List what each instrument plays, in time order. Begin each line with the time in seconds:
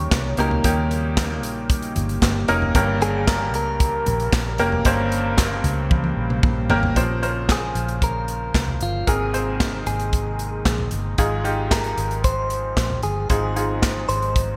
Already playing: upright piano A#2 A#3 C#4 D#4 G4 D#5, pipe organ C#3 G3 A#3 D#4 G4, clean electric guitar C#5
0.11 fingered electric bass C2, kick, snare, clap, closed hi-hat
0.37 fingered electric bass C#2, upright piano A#2 A#3 C#4 D#4 G4, clean electric guitar A#4, closed hi-hat
0.51 floor tom
0.64 fingered electric bass D#2, upright piano A#3 C#4 D#4 G4, kick, closed hi-hat
0.91 closed hi-hat
1.17 kick, snare, clap, closed hi-hat
1.43 fingered electric bass A#1, closed hi-hat
1.70 kick, closed hi-hat
1.82 closed hi-hat
1.96 fingered electric bass G1, closed hi-hat, floor tom
2.09 closed hi-hat
2.22 fingered electric bass G1, kick, snare, clap, closed hi-hat
2.48 fingered electric bass F1, upright piano A#3 C#4 D#4 A#4, closed hi-hat
2.62 floor tom
2.75 fingered electric bass G1, upright piano G2 G3 A#3 C#4 G4 A#4, pipe organ A#4, kick, closed hi-hat
3.02 clean electric guitar G#4, closed hi-hat
3.27 clean electric guitar A#4, kick, snare, clap, closed hi-hat
3.54 fingered electric bass C#2, clean electric guitar A#4, closed hi-hat
3.80 kick, closed hi-hat
4.06 fingered electric bass A#1, closed hi-hat, floor tom
4.20 closed hi-hat
4.33 fingered electric bass A#1, kick, snare, clap, closed hi-hat
4.58 fingered electric bass F1, upright piano A#3 C#4 G4 A#4, closed hi-hat
4.72 floor tom
4.85 fingered electric bass G1, upright piano G2 G3 A#3 C#4 G4 C5, pipe organ C5, kick, closed hi-hat
5.12 closed hi-hat
5.38 kick, snare, clap, closed hi-hat
5.64 fingered electric bass C#2, closed hi-hat, floor tom
5.91 kick, high tom
6.04 high tom
6.17 fingered electric bass A#1
6.30 mid tom
6.43 fingered electric bass A#1, kick, mid tom
6.70 fingered electric bass G#1, upright piano A#3 C#4 G4 A#4, floor tom
6.83 floor tom
6.96 fingered electric bass A#1, upright piano A#2 F3 C#4 A#4 C5, pipe organ C#3 F3 A#3 F4 C5, kick, closed hi-hat
7.23 upright piano C#4 A#4 C5, closed hi-hat
7.49 clean electric guitar G#4, kick, snare, clap, closed hi-hat
7.75 fingered electric bass A#1, closed hi-hat
7.88 closed hi-hat
8.02 clean electric guitar A#4, kick, closed hi-hat
8.28 closed hi-hat
8.54 fingered electric bass C2, kick, snare, clap, closed hi-hat
8.68 floor tom
8.81 fingered electric bass G1, clean electric guitar F4, closed hi-hat
9.07 fingered electric bass G#1, upright piano G#2 D#3 C4 G#4 A#4, pipe organ C3 D#3 G#3 D#4, clean electric guitar G#4, kick, closed hi-hat
9.34 upright piano C4 G#4 C5, closed hi-hat
9.60 kick, snare, clap, closed hi-hat
9.87 fingered electric bass G#1, clean electric guitar G#4, closed hi-hat
9.99 closed hi-hat
10.13 kick, closed hi-hat
10.39 closed hi-hat
10.65 fingered electric bass A#1, kick, snare, clap, closed hi-hat
10.78 floor tom
10.91 fingered electric bass G1, closed hi-hat
11.18 fingered electric bass G#1, upright piano G#2 G#3 D#4 F4 G#4, pipe organ F3 F4, kick, closed hi-hat
11.44 upright piano D#4 F4 G4, closed hi-hat
11.71 clean electric guitar A#4, kick, snare, clap, closed hi-hat
11.84 closed hi-hat
11.97 fingered electric bass G#1, closed hi-hat
12.11 closed hi-hat
12.24 clean electric guitar C5, kick, closed hi-hat
12.50 closed hi-hat
12.77 fingered electric bass A#1, kick, snare, clap, closed hi-hat
12.90 floor tom
13.03 fingered electric bass G1, clean electric guitar G#4, closed hi-hat
13.30 fingered electric bass G#1, upright piano G#2 G#3 D#4 F4 G#4, pipe organ D#4, clean electric guitar C5, kick, closed hi-hat
13.56 upright piano D#4 F4 G#4, closed hi-hat
13.82 kick, snare, clap, closed hi-hat
14.09 fingered electric bass G#1, clean electric guitar C5, closed hi-hat
14.22 closed hi-hat
14.36 kick, closed hi-hat